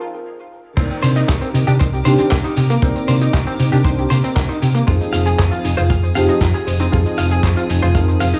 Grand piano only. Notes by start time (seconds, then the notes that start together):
0.77 D#3 C4 A#4 D5
2.06 D#3 C4 D4 G4
2.82 D#3 C4 A#4 D5
3.85 D#3 C4 D4 C5
4.87 F3 C4 D#4 G#4
6.15 F3 C4 D#4 G4
6.92 F3 C4 D#4 G#4
7.95 F3 C4 D#4 A#4